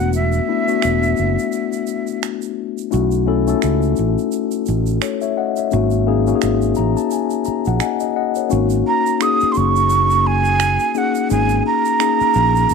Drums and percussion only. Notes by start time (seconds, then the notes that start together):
0.13 shaker
0.32 shaker
0.68 shaker
0.82 finger snap, shaker
1.03 shaker
1.17 shaker
1.39 shaker
1.52 shaker
1.73 shaker
1.87 shaker
2.07 shaker
2.23 finger snap, shaker
2.42 shaker
2.78 shaker
2.92 shaker
3.11 shaker
3.48 shaker
3.62 finger snap, shaker
3.82 shaker
3.96 shaker
4.18 shaker
4.32 shaker
4.51 shaker
4.66 shaker
4.86 shaker
5.02 finger snap, shaker
5.21 shaker
5.56 shaker
5.71 shaker
5.91 shaker
6.27 shaker
6.42 finger snap, shaker
6.62 shaker
6.75 shaker
6.97 shaker
7.11 shaker
7.30 shaker
7.45 shaker
7.65 shaker
7.80 finger snap, shaker
8.00 shaker
8.35 shaker
8.50 shaker
8.70 shaker
9.06 shaker
9.21 finger snap, shaker
9.40 shaker
9.54 shaker
9.76 shaker
9.90 shaker
10.10 shaker
10.44 shaker
10.60 finger snap, shaker
10.80 shaker
10.95 shaker
11.15 shaker
11.30 shaker
11.49 shaker
11.85 shaker
12.00 finger snap, shaker
12.20 shaker
12.34 shaker
12.56 shaker
12.69 shaker